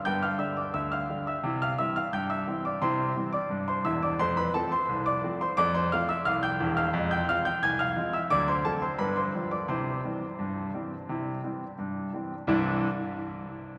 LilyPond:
<<
  \new Staff \with { instrumentName = "Grand piano" } { \time 2/4 \key c \major \tempo 4 = 87 <g'' g'''>16 <f'' f'''>16 <e'' e'''>16 <d'' d'''>16 <e'' e'''>16 <f'' f'''>8 <e'' e'''>16~ | <e'' e'''>16 <f'' f'''>16 <e'' e'''>16 <f'' f'''>16 <g'' g'''>16 <e'' e'''>8 <d'' d'''>16 | <c'' c'''>8. <d'' d'''>8 <c'' c'''>16 <e'' e'''>16 <d'' d'''>16 | <c'' c'''>16 <b' b''>16 <a' a''>16 <c'' c'''>8 <d'' d'''>8 <c'' c'''>16 |
<d'' d'''>16 <c'' c'''>16 <f'' f'''>16 <e'' e'''>16 <f'' f'''>16 <g'' g'''>8 <f'' f'''>16~ | <f'' f'''>16 <g'' g'''>16 <f'' f'''>16 <g'' g'''>16 <aes'' aes'''>16 <f'' f'''>8 <e'' e'''>16 | <d'' d'''>16 <c'' c'''>16 <a' a''>16 <c'' c'''>16 <b' b''>16 <c'' c'''>8 <d'' d'''>16 | <c'' c'''>2~ |
<c'' c'''>4 r4 | <c, g, e g c' e'>8 r4. | }
  \new Staff \with { instrumentName = "Grand piano" } { \clef bass \time 2/4 \key c \major <g, b>8 <d g d'>8 d,8 <d g d'>8 | <c e'>8 <e g c'>8 g,8 <e g c'>8 | <c e'>8 <e g c'>8 g,8 <e,, e,>8 | <f, a>8 <f a c'>8 c,8 <f a c'>8 |
<f, a>8 <f a c'>8 c,8 <e,, e,>8 | <f, aes>8 <f aes c'>8 c,8 <f aes c'>8 | <d, fis>8 <fis a c'>8 <g, b>8 <f g d'>8 | <c e'>8 <e g c'>8 g,8 <e g c'>8 |
<c e'>8 <e g c'>8 g,8 <e g c'>8 | r2 | }
>>